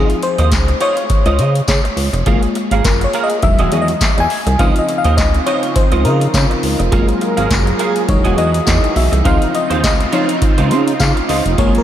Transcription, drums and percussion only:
0.10 closed hi-hat
0.23 closed hi-hat
0.38 closed hi-hat
0.52 kick, snare, clap, closed hi-hat, tambourine
0.68 closed hi-hat
0.81 closed hi-hat
0.97 closed hi-hat
1.10 kick, closed hi-hat
1.26 closed hi-hat
1.39 closed hi-hat
1.55 closed hi-hat
1.68 kick, snare, clap, closed hi-hat, tambourine
1.85 closed hi-hat
1.97 open hi-hat
2.14 closed hi-hat
2.26 kick, closed hi-hat
2.43 closed hi-hat
2.55 closed hi-hat
2.71 closed hi-hat
2.85 kick, snare, clap, closed hi-hat, tambourine
3.01 closed hi-hat
3.13 closed hi-hat
3.30 closed hi-hat
3.42 kick, closed hi-hat
3.59 closed hi-hat
3.72 closed hi-hat
3.88 closed hi-hat
4.01 kick, snare, clap, closed hi-hat, tambourine
4.18 closed hi-hat
4.30 open hi-hat
4.47 closed hi-hat
4.59 kick, closed hi-hat
4.76 closed hi-hat
4.89 closed hi-hat
5.04 closed hi-hat
5.18 kick, snare, clap, closed hi-hat, tambourine
5.34 closed hi-hat
5.47 closed hi-hat
5.63 closed hi-hat
5.76 kick, closed hi-hat
5.92 closed hi-hat
6.05 closed hi-hat
6.21 closed hi-hat
6.34 kick, snare, clap, closed hi-hat, tambourine
6.51 closed hi-hat
6.63 open hi-hat
6.80 closed hi-hat
6.92 kick, closed hi-hat
7.09 closed hi-hat
7.21 closed hi-hat
7.37 closed hi-hat
7.51 kick, snare, clap, closed hi-hat, tambourine
7.67 closed hi-hat
7.79 closed hi-hat
7.96 closed hi-hat
8.09 kick, closed hi-hat
8.25 closed hi-hat
8.38 closed hi-hat
8.54 closed hi-hat
8.67 kick, snare, clap, closed hi-hat, tambourine
8.84 closed hi-hat
8.96 open hi-hat
9.13 closed hi-hat
9.25 kick, closed hi-hat
9.42 closed hi-hat
9.55 closed hi-hat
9.71 closed hi-hat
9.84 kick, snare, clap, closed hi-hat, tambourine
10.00 closed hi-hat
10.13 closed hi-hat
10.29 closed hi-hat
10.42 kick, closed hi-hat
10.58 closed hi-hat
10.71 closed hi-hat
10.88 closed hi-hat
11.00 kick, snare, clap, closed hi-hat, tambourine
11.17 closed hi-hat
11.29 open hi-hat
11.46 closed hi-hat
11.58 kick, closed hi-hat
11.75 closed hi-hat

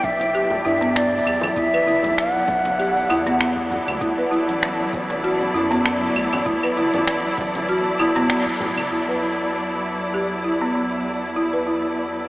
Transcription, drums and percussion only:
0.04 kick, muted conga, shaker
0.20 closed hi-hat, muted conga, shaker
0.35 closed hi-hat, shaker
0.50 low conga, shaker
0.66 shaker
0.82 closed hi-hat, shaker
0.96 finger snap, closed hi-hat, shaker
1.12 high conga
1.27 claves, shaker
1.41 closed hi-hat, low conga, claves, shaker
1.57 kick, closed hi-hat, shaker
1.74 claves, shaker
1.86 high conga, shaker
2.03 closed hi-hat, low conga, shaker
2.18 finger snap, closed hi-hat, shaker
2.35 shaker
2.48 kick, muted conga, shaker
2.65 closed hi-hat, muted conga, shaker
2.80 closed hi-hat, shaker
2.96 shaker
3.10 muted conga, claves, shaker
3.26 closed hi-hat, high conga, shaker
3.41 finger snap, closed hi-hat, shaker
3.57 kick
3.71 high conga, low conga, shaker
3.88 closed hi-hat, high conga, claves, shaker
4.01 kick, closed hi-hat, shaker
4.19 shaker
4.33 shaker
4.49 closed hi-hat, shaker
4.63 finger snap, closed hi-hat, shaker
4.80 shaker
4.93 kick, muted conga, shaker
5.10 closed hi-hat, muted conga, shaker
5.24 closed hi-hat, shaker
5.40 low conga, shaker
5.55 shaker
5.71 closed hi-hat, shaker
5.86 finger snap, closed hi-hat, shaker
6.02 high conga
6.16 claves, shaker
6.33 closed hi-hat, low conga, claves, shaker
6.46 kick, closed hi-hat, shaker
6.63 claves, shaker
6.77 high conga, shaker
6.94 closed hi-hat, low conga, shaker
7.07 finger snap, closed hi-hat, shaker
7.24 shaker
7.38 kick, muted conga, shaker
7.55 closed hi-hat, muted conga, shaker
7.69 closed hi-hat, shaker
7.86 shaker
7.99 muted conga, claves, shaker
8.16 closed hi-hat, high conga, shaker
8.30 finger snap, closed hi-hat, shaker
8.46 kick, shaker
8.60 high conga, low conga, shaker
8.77 closed hi-hat, high conga, claves, shaker
9.08 shaker
9.22 shaker
9.39 shaker
9.70 shaker
9.83 shaker
10.31 shaker
10.45 shaker
11.06 claves, shaker
11.23 claves, shaker
11.98 shaker

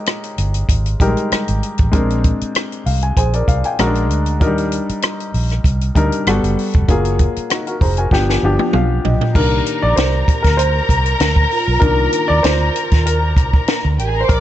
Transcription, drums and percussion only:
0.06 cross-stick, closed hi-hat
0.24 closed hi-hat
0.38 closed hi-hat
0.54 closed hi-hat
0.69 kick, closed hi-hat
0.86 closed hi-hat
1.00 kick, closed hi-hat
1.17 closed hi-hat
1.32 cross-stick, closed hi-hat
1.48 closed hi-hat
1.63 closed hi-hat
1.78 kick, closed hi-hat
1.93 kick, closed hi-hat
2.10 closed hi-hat
2.24 kick, closed hi-hat
2.41 closed hi-hat
2.55 cross-stick, closed hi-hat
2.72 closed hi-hat
2.86 open hi-hat
3.02 closed hi-hat
3.17 kick, closed hi-hat
3.33 closed hi-hat
3.48 kick, closed hi-hat
3.64 closed hi-hat
3.79 cross-stick, closed hi-hat
3.95 closed hi-hat
4.10 closed hi-hat
4.26 closed hi-hat
4.41 kick, closed hi-hat
4.58 closed hi-hat
4.72 closed hi-hat
4.89 closed hi-hat
5.02 cross-stick, closed hi-hat
5.20 closed hi-hat
5.34 open hi-hat
5.50 cross-stick, closed hi-hat
5.64 kick, closed hi-hat
5.81 closed hi-hat
5.96 kick, closed hi-hat
6.12 closed hi-hat
6.27 cross-stick, closed hi-hat
6.44 closed hi-hat
6.59 open hi-hat
6.74 kick, closed hi-hat
6.88 kick, closed hi-hat
7.05 closed hi-hat
7.19 kick, closed hi-hat
7.36 closed hi-hat
7.50 cross-stick, closed hi-hat
7.67 closed hi-hat
7.81 kick, open hi-hat
7.97 closed hi-hat
8.11 kick, snare
8.30 snare
8.59 high tom
8.73 mid tom
9.05 floor tom
9.21 floor tom
9.35 kick, crash
9.66 closed hi-hat
9.97 snare, closed hi-hat
10.28 kick, closed hi-hat
10.44 kick, snare, closed hi-hat
10.59 closed hi-hat
10.89 kick, closed hi-hat
11.06 closed hi-hat
11.20 snare, closed hi-hat
11.36 kick
11.51 open hi-hat
11.82 kick, closed hi-hat
12.13 closed hi-hat
12.44 snare, closed hi-hat
12.76 closed hi-hat
12.91 kick, snare, closed hi-hat
13.06 closed hi-hat
13.37 kick, closed hi-hat
13.53 kick
13.68 snare, closed hi-hat
13.99 closed hi-hat
14.29 kick, closed hi-hat

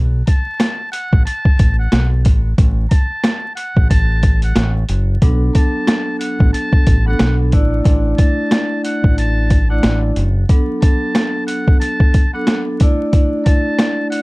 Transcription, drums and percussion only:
0.27 kick, closed hi-hat
0.60 snare, closed hi-hat
0.93 closed hi-hat
1.13 kick
1.27 closed hi-hat
1.45 kick
1.59 kick, closed hi-hat
1.92 snare, closed hi-hat
2.25 kick, closed hi-hat
2.58 kick, closed hi-hat
2.91 kick, closed hi-hat
3.24 snare, closed hi-hat
3.57 closed hi-hat
3.76 kick
3.91 kick, closed hi-hat
4.23 kick, closed hi-hat
4.42 closed hi-hat
4.56 snare, closed hi-hat
4.89 closed hi-hat
5.22 kick, closed hi-hat
5.55 kick, closed hi-hat
5.87 snare, closed hi-hat
6.21 closed hi-hat
6.40 kick
6.54 closed hi-hat
6.73 kick
6.87 kick, closed hi-hat
7.19 snare, closed hi-hat
7.52 kick, closed hi-hat
7.85 kick, closed hi-hat
8.18 kick, closed hi-hat
8.51 snare, closed hi-hat
8.84 closed hi-hat
9.04 kick
9.18 closed hi-hat
9.50 kick, closed hi-hat
9.83 snare, closed hi-hat
10.16 closed hi-hat
10.49 kick, closed hi-hat
10.82 kick, closed hi-hat
11.15 snare, closed hi-hat
11.48 closed hi-hat
11.68 kick
11.82 closed hi-hat
12.00 kick
12.14 kick, closed hi-hat
12.47 snare, closed hi-hat
12.80 kick, closed hi-hat
13.13 kick, closed hi-hat
13.46 kick, closed hi-hat
13.79 snare, closed hi-hat
14.12 closed hi-hat

